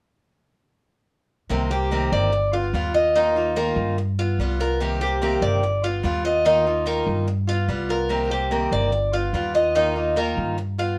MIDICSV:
0, 0, Header, 1, 5, 480
1, 0, Start_track
1, 0, Key_signature, -3, "minor"
1, 0, Tempo, 413223
1, 1744, Time_signature, 4, 2, 24, 8
1, 12760, End_track
2, 0, Start_track
2, 0, Title_t, "Cuban tres"
2, 0, Program_c, 0, 25
2, 1985, Note_on_c, 0, 67, 61
2, 2451, Note_off_c, 0, 67, 0
2, 2469, Note_on_c, 0, 74, 59
2, 2933, Note_off_c, 0, 74, 0
2, 2945, Note_on_c, 0, 65, 62
2, 3411, Note_off_c, 0, 65, 0
2, 3421, Note_on_c, 0, 75, 67
2, 3656, Note_off_c, 0, 75, 0
2, 3666, Note_on_c, 0, 63, 66
2, 4131, Note_off_c, 0, 63, 0
2, 4143, Note_on_c, 0, 70, 63
2, 4377, Note_off_c, 0, 70, 0
2, 4868, Note_on_c, 0, 65, 69
2, 5332, Note_off_c, 0, 65, 0
2, 5349, Note_on_c, 0, 70, 67
2, 5811, Note_off_c, 0, 70, 0
2, 5820, Note_on_c, 0, 67, 65
2, 6287, Note_off_c, 0, 67, 0
2, 6299, Note_on_c, 0, 74, 61
2, 6765, Note_off_c, 0, 74, 0
2, 6781, Note_on_c, 0, 65, 69
2, 7246, Note_off_c, 0, 65, 0
2, 7258, Note_on_c, 0, 75, 67
2, 7492, Note_off_c, 0, 75, 0
2, 7500, Note_on_c, 0, 63, 71
2, 7965, Note_off_c, 0, 63, 0
2, 7977, Note_on_c, 0, 70, 59
2, 8211, Note_off_c, 0, 70, 0
2, 8697, Note_on_c, 0, 65, 68
2, 9162, Note_off_c, 0, 65, 0
2, 9178, Note_on_c, 0, 70, 64
2, 9643, Note_off_c, 0, 70, 0
2, 9657, Note_on_c, 0, 67, 61
2, 10122, Note_off_c, 0, 67, 0
2, 10136, Note_on_c, 0, 74, 64
2, 10601, Note_off_c, 0, 74, 0
2, 10612, Note_on_c, 0, 65, 65
2, 11080, Note_off_c, 0, 65, 0
2, 11093, Note_on_c, 0, 75, 66
2, 11328, Note_off_c, 0, 75, 0
2, 11335, Note_on_c, 0, 63, 67
2, 11801, Note_off_c, 0, 63, 0
2, 11814, Note_on_c, 0, 70, 60
2, 12048, Note_off_c, 0, 70, 0
2, 12534, Note_on_c, 0, 65, 68
2, 12760, Note_off_c, 0, 65, 0
2, 12760, End_track
3, 0, Start_track
3, 0, Title_t, "Steel-string acoustic guitar"
3, 0, Program_c, 1, 25
3, 1736, Note_on_c, 1, 48, 63
3, 1744, Note_on_c, 1, 51, 64
3, 1747, Note_on_c, 1, 58, 76
3, 1752, Note_on_c, 1, 60, 76
3, 1755, Note_on_c, 1, 67, 76
3, 1964, Note_off_c, 1, 67, 0
3, 1970, Note_off_c, 1, 48, 0
3, 1970, Note_off_c, 1, 60, 0
3, 1974, Note_off_c, 1, 51, 0
3, 1976, Note_off_c, 1, 58, 0
3, 1978, Note_on_c, 1, 67, 50
3, 1984, Note_on_c, 1, 60, 43
3, 1993, Note_on_c, 1, 58, 37
3, 2211, Note_off_c, 1, 67, 0
3, 2214, Note_off_c, 1, 58, 0
3, 2215, Note_off_c, 1, 60, 0
3, 2219, Note_on_c, 1, 48, 59
3, 2222, Note_on_c, 1, 51, 63
3, 2228, Note_on_c, 1, 58, 66
3, 2233, Note_on_c, 1, 60, 71
3, 2234, Note_on_c, 1, 67, 66
3, 2692, Note_off_c, 1, 48, 0
3, 2694, Note_off_c, 1, 51, 0
3, 2694, Note_off_c, 1, 58, 0
3, 2700, Note_off_c, 1, 60, 0
3, 2700, Note_off_c, 1, 67, 0
3, 2937, Note_on_c, 1, 65, 47
3, 2952, Note_on_c, 1, 59, 36
3, 3171, Note_off_c, 1, 65, 0
3, 3175, Note_off_c, 1, 59, 0
3, 3180, Note_on_c, 1, 55, 58
3, 3189, Note_on_c, 1, 59, 66
3, 3195, Note_on_c, 1, 65, 71
3, 3403, Note_off_c, 1, 65, 0
3, 3413, Note_off_c, 1, 55, 0
3, 3417, Note_off_c, 1, 59, 0
3, 3417, Note_on_c, 1, 65, 40
3, 3434, Note_on_c, 1, 59, 34
3, 3651, Note_off_c, 1, 65, 0
3, 3660, Note_off_c, 1, 59, 0
3, 3664, Note_on_c, 1, 51, 65
3, 3670, Note_on_c, 1, 58, 72
3, 3676, Note_on_c, 1, 63, 71
3, 3684, Note_on_c, 1, 65, 74
3, 3889, Note_off_c, 1, 65, 0
3, 3895, Note_off_c, 1, 51, 0
3, 3896, Note_off_c, 1, 63, 0
3, 3898, Note_off_c, 1, 58, 0
3, 3903, Note_on_c, 1, 65, 49
3, 3910, Note_on_c, 1, 63, 41
3, 3920, Note_on_c, 1, 58, 40
3, 4127, Note_off_c, 1, 58, 0
3, 4132, Note_off_c, 1, 63, 0
3, 4134, Note_off_c, 1, 65, 0
3, 4137, Note_on_c, 1, 51, 65
3, 4141, Note_on_c, 1, 58, 63
3, 4146, Note_on_c, 1, 63, 64
3, 4152, Note_on_c, 1, 65, 74
3, 4611, Note_off_c, 1, 51, 0
3, 4613, Note_off_c, 1, 58, 0
3, 4616, Note_off_c, 1, 63, 0
3, 4619, Note_off_c, 1, 65, 0
3, 4865, Note_on_c, 1, 65, 49
3, 4885, Note_on_c, 1, 59, 39
3, 5095, Note_off_c, 1, 65, 0
3, 5105, Note_off_c, 1, 59, 0
3, 5105, Note_on_c, 1, 55, 67
3, 5118, Note_on_c, 1, 59, 68
3, 5126, Note_on_c, 1, 65, 76
3, 5325, Note_off_c, 1, 65, 0
3, 5335, Note_off_c, 1, 55, 0
3, 5339, Note_on_c, 1, 65, 49
3, 5341, Note_off_c, 1, 59, 0
3, 5354, Note_on_c, 1, 59, 37
3, 5572, Note_off_c, 1, 65, 0
3, 5578, Note_on_c, 1, 48, 67
3, 5579, Note_off_c, 1, 59, 0
3, 5582, Note_on_c, 1, 51, 67
3, 5585, Note_on_c, 1, 58, 71
3, 5591, Note_on_c, 1, 60, 69
3, 5596, Note_on_c, 1, 67, 76
3, 5804, Note_off_c, 1, 67, 0
3, 5811, Note_off_c, 1, 48, 0
3, 5813, Note_off_c, 1, 51, 0
3, 5813, Note_off_c, 1, 60, 0
3, 5815, Note_off_c, 1, 58, 0
3, 5818, Note_on_c, 1, 67, 46
3, 5826, Note_on_c, 1, 60, 44
3, 5831, Note_on_c, 1, 58, 41
3, 6051, Note_off_c, 1, 67, 0
3, 6052, Note_off_c, 1, 58, 0
3, 6055, Note_off_c, 1, 60, 0
3, 6058, Note_on_c, 1, 48, 64
3, 6062, Note_on_c, 1, 51, 63
3, 6066, Note_on_c, 1, 58, 75
3, 6071, Note_on_c, 1, 60, 69
3, 6072, Note_on_c, 1, 67, 72
3, 6530, Note_off_c, 1, 48, 0
3, 6532, Note_off_c, 1, 51, 0
3, 6534, Note_off_c, 1, 58, 0
3, 6536, Note_off_c, 1, 60, 0
3, 6537, Note_off_c, 1, 67, 0
3, 6777, Note_on_c, 1, 65, 50
3, 6793, Note_on_c, 1, 59, 34
3, 7003, Note_off_c, 1, 59, 0
3, 7005, Note_on_c, 1, 55, 62
3, 7009, Note_off_c, 1, 65, 0
3, 7017, Note_on_c, 1, 59, 73
3, 7026, Note_on_c, 1, 65, 71
3, 7238, Note_off_c, 1, 65, 0
3, 7243, Note_off_c, 1, 55, 0
3, 7249, Note_off_c, 1, 59, 0
3, 7252, Note_on_c, 1, 65, 40
3, 7268, Note_on_c, 1, 59, 33
3, 7486, Note_off_c, 1, 65, 0
3, 7491, Note_on_c, 1, 51, 62
3, 7494, Note_off_c, 1, 59, 0
3, 7496, Note_on_c, 1, 58, 65
3, 7504, Note_on_c, 1, 63, 68
3, 7507, Note_on_c, 1, 65, 80
3, 7723, Note_off_c, 1, 65, 0
3, 7726, Note_off_c, 1, 51, 0
3, 7728, Note_off_c, 1, 58, 0
3, 7732, Note_off_c, 1, 63, 0
3, 7737, Note_on_c, 1, 65, 47
3, 7747, Note_on_c, 1, 63, 41
3, 7755, Note_on_c, 1, 58, 39
3, 7959, Note_off_c, 1, 58, 0
3, 7965, Note_off_c, 1, 63, 0
3, 7966, Note_on_c, 1, 51, 61
3, 7968, Note_off_c, 1, 65, 0
3, 7973, Note_on_c, 1, 58, 64
3, 7979, Note_on_c, 1, 63, 77
3, 7983, Note_on_c, 1, 65, 71
3, 8442, Note_off_c, 1, 51, 0
3, 8442, Note_off_c, 1, 65, 0
3, 8446, Note_off_c, 1, 58, 0
3, 8449, Note_off_c, 1, 63, 0
3, 8681, Note_on_c, 1, 65, 43
3, 8698, Note_on_c, 1, 59, 41
3, 8919, Note_off_c, 1, 65, 0
3, 8920, Note_off_c, 1, 59, 0
3, 8925, Note_on_c, 1, 55, 61
3, 8934, Note_on_c, 1, 59, 65
3, 8943, Note_on_c, 1, 65, 66
3, 9150, Note_off_c, 1, 65, 0
3, 9162, Note_off_c, 1, 55, 0
3, 9163, Note_off_c, 1, 59, 0
3, 9164, Note_on_c, 1, 65, 47
3, 9177, Note_on_c, 1, 59, 39
3, 9398, Note_on_c, 1, 48, 64
3, 9401, Note_off_c, 1, 65, 0
3, 9404, Note_on_c, 1, 51, 64
3, 9407, Note_off_c, 1, 59, 0
3, 9408, Note_on_c, 1, 58, 69
3, 9412, Note_on_c, 1, 60, 69
3, 9413, Note_on_c, 1, 67, 71
3, 9624, Note_off_c, 1, 67, 0
3, 9635, Note_off_c, 1, 60, 0
3, 9638, Note_off_c, 1, 48, 0
3, 9638, Note_on_c, 1, 67, 45
3, 9641, Note_off_c, 1, 51, 0
3, 9643, Note_off_c, 1, 58, 0
3, 9649, Note_on_c, 1, 60, 41
3, 9655, Note_on_c, 1, 58, 35
3, 9877, Note_off_c, 1, 67, 0
3, 9880, Note_off_c, 1, 58, 0
3, 9880, Note_off_c, 1, 60, 0
3, 9886, Note_on_c, 1, 48, 64
3, 9886, Note_on_c, 1, 51, 62
3, 9894, Note_on_c, 1, 58, 64
3, 9894, Note_on_c, 1, 60, 72
3, 9899, Note_on_c, 1, 67, 70
3, 10359, Note_off_c, 1, 58, 0
3, 10361, Note_off_c, 1, 48, 0
3, 10361, Note_off_c, 1, 51, 0
3, 10362, Note_off_c, 1, 60, 0
3, 10366, Note_off_c, 1, 67, 0
3, 10606, Note_on_c, 1, 65, 47
3, 10621, Note_on_c, 1, 59, 38
3, 10841, Note_off_c, 1, 59, 0
3, 10841, Note_off_c, 1, 65, 0
3, 10848, Note_on_c, 1, 55, 65
3, 10855, Note_on_c, 1, 59, 64
3, 10864, Note_on_c, 1, 65, 69
3, 11071, Note_off_c, 1, 65, 0
3, 11082, Note_off_c, 1, 55, 0
3, 11085, Note_on_c, 1, 65, 45
3, 11086, Note_off_c, 1, 59, 0
3, 11099, Note_on_c, 1, 59, 39
3, 11321, Note_off_c, 1, 65, 0
3, 11327, Note_on_c, 1, 51, 62
3, 11328, Note_off_c, 1, 59, 0
3, 11334, Note_on_c, 1, 58, 69
3, 11336, Note_on_c, 1, 63, 76
3, 11342, Note_on_c, 1, 65, 77
3, 11550, Note_off_c, 1, 65, 0
3, 11556, Note_off_c, 1, 63, 0
3, 11562, Note_off_c, 1, 51, 0
3, 11563, Note_on_c, 1, 65, 43
3, 11565, Note_off_c, 1, 58, 0
3, 11570, Note_on_c, 1, 63, 46
3, 11579, Note_on_c, 1, 58, 41
3, 11795, Note_off_c, 1, 58, 0
3, 11800, Note_off_c, 1, 63, 0
3, 11800, Note_off_c, 1, 65, 0
3, 11803, Note_on_c, 1, 51, 62
3, 11809, Note_on_c, 1, 58, 63
3, 11814, Note_on_c, 1, 63, 69
3, 11822, Note_on_c, 1, 65, 68
3, 12280, Note_off_c, 1, 65, 0
3, 12281, Note_off_c, 1, 51, 0
3, 12281, Note_off_c, 1, 58, 0
3, 12286, Note_off_c, 1, 63, 0
3, 12526, Note_on_c, 1, 65, 51
3, 12542, Note_on_c, 1, 59, 38
3, 12760, Note_off_c, 1, 59, 0
3, 12760, Note_off_c, 1, 65, 0
3, 12760, End_track
4, 0, Start_track
4, 0, Title_t, "Upright bass"
4, 0, Program_c, 2, 32
4, 1743, Note_on_c, 2, 36, 88
4, 2418, Note_off_c, 2, 36, 0
4, 2464, Note_on_c, 2, 31, 83
4, 3138, Note_off_c, 2, 31, 0
4, 3176, Note_on_c, 2, 39, 77
4, 4310, Note_off_c, 2, 39, 0
4, 4371, Note_on_c, 2, 43, 88
4, 5051, Note_off_c, 2, 43, 0
4, 5094, Note_on_c, 2, 36, 75
4, 6227, Note_off_c, 2, 36, 0
4, 6293, Note_on_c, 2, 31, 81
4, 6970, Note_off_c, 2, 31, 0
4, 7013, Note_on_c, 2, 39, 76
4, 8144, Note_off_c, 2, 39, 0
4, 8208, Note_on_c, 2, 43, 81
4, 8886, Note_off_c, 2, 43, 0
4, 8924, Note_on_c, 2, 36, 77
4, 10059, Note_off_c, 2, 36, 0
4, 10125, Note_on_c, 2, 31, 84
4, 10804, Note_off_c, 2, 31, 0
4, 10842, Note_on_c, 2, 39, 76
4, 11979, Note_off_c, 2, 39, 0
4, 12047, Note_on_c, 2, 43, 84
4, 12727, Note_off_c, 2, 43, 0
4, 12760, End_track
5, 0, Start_track
5, 0, Title_t, "Muted steel-string acoustic guitar strokes"
5, 2699, Note_on_c, 9, 29, 51
5, 2815, Note_off_c, 9, 29, 0
5, 4625, Note_on_c, 9, 29, 61
5, 4741, Note_off_c, 9, 29, 0
5, 6539, Note_on_c, 9, 29, 58
5, 6655, Note_off_c, 9, 29, 0
5, 8450, Note_on_c, 9, 29, 53
5, 8566, Note_off_c, 9, 29, 0
5, 10363, Note_on_c, 9, 29, 56
5, 10479, Note_off_c, 9, 29, 0
5, 12286, Note_on_c, 9, 29, 56
5, 12402, Note_off_c, 9, 29, 0
5, 12760, End_track
0, 0, End_of_file